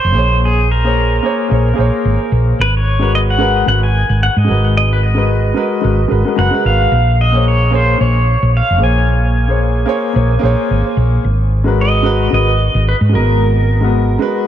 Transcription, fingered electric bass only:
0, 0, Header, 1, 2, 480
1, 0, Start_track
1, 0, Key_signature, -5, "minor"
1, 0, Tempo, 540541
1, 386, Time_signature, 4, 2, 24, 8
1, 12850, End_track
2, 0, Start_track
2, 0, Title_t, "Fingered electric bass"
2, 0, Program_c, 0, 33
2, 37, Note_on_c, 0, 29, 84
2, 137, Note_off_c, 0, 29, 0
2, 137, Note_on_c, 0, 34, 93
2, 1048, Note_off_c, 0, 34, 0
2, 1341, Note_on_c, 0, 34, 79
2, 1517, Note_off_c, 0, 34, 0
2, 1584, Note_on_c, 0, 34, 71
2, 1677, Note_off_c, 0, 34, 0
2, 1820, Note_on_c, 0, 32, 76
2, 1915, Note_off_c, 0, 32, 0
2, 2059, Note_on_c, 0, 34, 89
2, 2236, Note_off_c, 0, 34, 0
2, 2300, Note_on_c, 0, 32, 88
2, 3210, Note_off_c, 0, 32, 0
2, 3260, Note_on_c, 0, 32, 76
2, 3570, Note_off_c, 0, 32, 0
2, 3635, Note_on_c, 0, 32, 85
2, 3793, Note_off_c, 0, 32, 0
2, 3875, Note_on_c, 0, 44, 88
2, 3981, Note_on_c, 0, 32, 88
2, 3995, Note_off_c, 0, 44, 0
2, 4891, Note_off_c, 0, 32, 0
2, 5187, Note_on_c, 0, 32, 80
2, 5361, Note_off_c, 0, 32, 0
2, 5427, Note_on_c, 0, 32, 74
2, 5519, Note_off_c, 0, 32, 0
2, 5663, Note_on_c, 0, 30, 82
2, 5757, Note_off_c, 0, 30, 0
2, 5905, Note_on_c, 0, 32, 85
2, 6080, Note_off_c, 0, 32, 0
2, 6141, Note_on_c, 0, 34, 95
2, 7051, Note_off_c, 0, 34, 0
2, 7107, Note_on_c, 0, 34, 72
2, 7413, Note_off_c, 0, 34, 0
2, 7481, Note_on_c, 0, 34, 86
2, 7636, Note_off_c, 0, 34, 0
2, 7727, Note_on_c, 0, 29, 88
2, 7831, Note_off_c, 0, 29, 0
2, 7831, Note_on_c, 0, 34, 92
2, 8736, Note_off_c, 0, 34, 0
2, 9019, Note_on_c, 0, 34, 82
2, 9196, Note_off_c, 0, 34, 0
2, 9261, Note_on_c, 0, 34, 76
2, 9356, Note_off_c, 0, 34, 0
2, 9505, Note_on_c, 0, 32, 85
2, 9598, Note_off_c, 0, 32, 0
2, 9740, Note_on_c, 0, 34, 91
2, 9917, Note_off_c, 0, 34, 0
2, 9984, Note_on_c, 0, 32, 92
2, 10892, Note_off_c, 0, 32, 0
2, 10942, Note_on_c, 0, 32, 73
2, 11251, Note_off_c, 0, 32, 0
2, 11317, Note_on_c, 0, 32, 90
2, 11474, Note_off_c, 0, 32, 0
2, 11552, Note_on_c, 0, 44, 89
2, 11662, Note_on_c, 0, 32, 93
2, 11676, Note_off_c, 0, 44, 0
2, 12571, Note_off_c, 0, 32, 0
2, 12850, End_track
0, 0, End_of_file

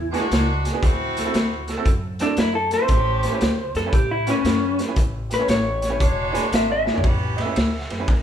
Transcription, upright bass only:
0, 0, Header, 1, 2, 480
1, 0, Start_track
1, 0, Tempo, 517598
1, 771, Time_signature, 4, 2, 24, 8
1, 7628, End_track
2, 0, Start_track
2, 0, Title_t, "Upright bass"
2, 0, Program_c, 0, 32
2, 0, Note_on_c, 0, 40, 80
2, 141, Note_off_c, 0, 40, 0
2, 283, Note_on_c, 0, 37, 82
2, 618, Note_off_c, 0, 37, 0
2, 769, Note_on_c, 0, 38, 93
2, 1102, Note_off_c, 0, 38, 0
2, 1243, Note_on_c, 0, 38, 87
2, 1578, Note_off_c, 0, 38, 0
2, 1720, Note_on_c, 0, 42, 86
2, 2056, Note_off_c, 0, 42, 0
2, 2198, Note_on_c, 0, 42, 77
2, 2534, Note_off_c, 0, 42, 0
2, 2678, Note_on_c, 0, 33, 95
2, 3015, Note_off_c, 0, 33, 0
2, 3166, Note_on_c, 0, 38, 90
2, 3384, Note_off_c, 0, 38, 0
2, 3476, Note_on_c, 0, 42, 83
2, 3594, Note_off_c, 0, 42, 0
2, 3643, Note_on_c, 0, 45, 93
2, 3978, Note_off_c, 0, 45, 0
2, 4119, Note_on_c, 0, 42, 86
2, 4455, Note_off_c, 0, 42, 0
2, 4605, Note_on_c, 0, 33, 94
2, 4939, Note_off_c, 0, 33, 0
2, 5083, Note_on_c, 0, 33, 100
2, 5569, Note_off_c, 0, 33, 0
2, 5569, Note_on_c, 0, 28, 90
2, 5902, Note_off_c, 0, 28, 0
2, 6044, Note_on_c, 0, 32, 83
2, 6379, Note_off_c, 0, 32, 0
2, 6526, Note_on_c, 0, 33, 88
2, 6860, Note_off_c, 0, 33, 0
2, 7016, Note_on_c, 0, 38, 86
2, 7231, Note_off_c, 0, 38, 0
2, 7328, Note_on_c, 0, 42, 80
2, 7442, Note_off_c, 0, 42, 0
2, 7494, Note_on_c, 0, 45, 80
2, 7628, Note_off_c, 0, 45, 0
2, 7628, End_track
0, 0, End_of_file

